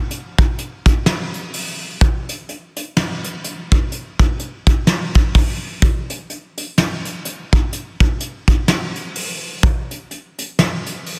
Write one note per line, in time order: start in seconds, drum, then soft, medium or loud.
0.11 closed hi-hat medium
0.38 kick loud
0.38 closed hi-hat soft
0.58 closed hi-hat medium
0.86 kick medium
0.86 closed hi-hat medium
1.06 snare loud
1.06 closed hi-hat medium
1.34 closed hi-hat medium
1.54 open hi-hat medium
2.01 kick loud
2.01 closed hi-hat medium
2.29 closed hi-hat medium
2.49 closed hi-hat medium
2.76 closed hi-hat medium
2.96 snare loud
2.96 closed hi-hat medium
3.24 closed hi-hat medium
3.44 closed hi-hat medium
3.72 kick medium
3.72 closed hi-hat soft
3.92 closed hi-hat medium
4.19 kick loud
4.19 closed hi-hat medium
4.39 closed hi-hat medium
4.67 kick loud
4.67 closed hi-hat medium
4.87 snare loud
4.87 closed hi-hat medium
5.14 kick medium
5.14 closed hi-hat medium
5.34 kick loud
5.34 open hi-hat medium
5.82 kick loud
5.82 closed hi-hat medium
6.10 closed hi-hat medium
6.30 closed hi-hat medium
6.57 closed hi-hat medium
6.78 snare loud
6.78 closed hi-hat medium
7.05 closed hi-hat medium
7.25 closed hi-hat medium
7.53 kick medium
7.53 closed hi-hat soft
7.73 closed hi-hat medium
8.00 kick loud
8.00 closed hi-hat soft
8.20 closed hi-hat medium
8.48 kick loud
8.48 closed hi-hat medium
8.68 snare loud
8.68 closed hi-hat medium
8.96 closed hi-hat medium
9.15 open hi-hat medium
9.63 kick loud
9.63 closed hi-hat medium
9.91 closed hi-hat medium
10.11 closed hi-hat medium
10.38 closed hi-hat medium
10.59 snare loud
10.59 closed hi-hat medium
10.86 closed hi-hat medium
11.06 open hi-hat medium